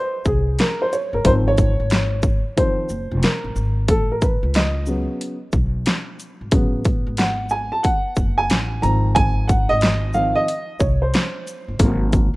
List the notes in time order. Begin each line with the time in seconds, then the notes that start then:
Already playing: C5
0.25 C2 G#4, kick, shaker
0.59 A#4, snare, closed hi-hat
0.82 C5
0.93 C#5, closed hi-hat, shaker
1.13 G1 A#4
1.24 G#1 D#3 F3 C4 C5, kick, closed hi-hat
1.48 C#5
1.58 kick, closed hi-hat, shaker
1.80 G#1
1.90 snare, closed hi-hat
2.22 kick, shaker
2.57 D#3 F3 C4 C5, kick, closed hi-hat
2.89 F#1, shaker
3.11 F1
3.23 A#4, snare, closed hi-hat
3.44 G#1
3.56 G#1, shaker
3.88 A1 A4, kick, closed hi-hat
4.12 A#4
4.22 B4, kick, closed hi-hat, shaker
4.43 C#2
4.54 D#5, snare, closed hi-hat
4.86 C#3 F#3 B3, shaker
5.21 closed hi-hat
5.52 B1, kick, shaker
5.86 snare, closed hi-hat
6.20 closed hi-hat, shaker
6.41 G#1
6.51 A1 C#3 F#3 B3, kick, closed hi-hat
6.85 kick, closed hi-hat, shaker
7.07 G#1
7.17 F#5, snare, closed hi-hat
7.49 G#5, shaker
7.72 A5
7.83 F#5, kick, closed hi-hat
8.16 F#1, kick, shaker
8.38 G#5
8.50 A1, snare, closed hi-hat
8.82 G#1 D#3 F3 C4 A#5, closed hi-hat, shaker
9.15 G#5, kick, closed hi-hat
9.48 F#5, kick, closed hi-hat, shaker
9.69 G#1 D#5
9.81 snare, closed hi-hat
10.13 D#3 F3 C4 F5, shaker
10.35 D#5
10.48 closed hi-hat
10.80 C2 C#5, kick, shaker
11.02 C5
11.14 snare, closed hi-hat
11.47 closed hi-hat, shaker
11.68 G1
11.79 G#1 C3 F#3 A#3, kick, closed hi-hat
12.13 kick, closed hi-hat, shaker